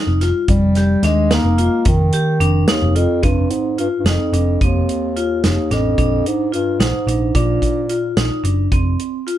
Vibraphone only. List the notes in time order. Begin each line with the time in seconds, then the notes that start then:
Already playing: D#4
0.21 F4
0.77 G4
1.04 D4
1.31 D#4
1.58 F4
2.14 G4
2.41 D4
2.69 D#4
2.95 F4
3.23 C4
3.78 F4
4.06 D#4
4.34 D4
4.62 C4
5.16 F4
5.44 D#4
5.71 D4
5.98 D4
6.52 F4
6.80 D#4
7.07 D4
7.35 D4
7.90 F4
8.17 D#4
8.44 D4
8.72 C4
9.27 F4